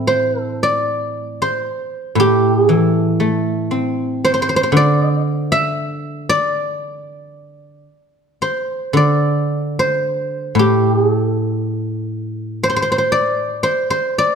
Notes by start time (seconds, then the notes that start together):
Already playing: A2 E3 A3 C4 E4 G4 A4
0.07 C5
0.41 A4
0.63 D5
1.42 C5
2.15 A2
2.20 G4
2.57 G#4
2.69 E3
2.79 A4
3.20 A3
3.71 C4
4.25 C5
4.34 C5
4.42 C5
4.49 C5
4.56 C5
4.63 C5
4.72 D3
4.77 D5
5.52 E5
6.29 D5
8.42 C5
8.93 D3 D5
9.79 C5
10.55 A2
10.59 G4
10.95 G#4
11.18 A4
12.63 C5
12.70 C5
12.76 C5
12.82 C5
12.92 C5
12.98 C5
13.12 D5
13.63 C5
13.90 C5
14.18 D5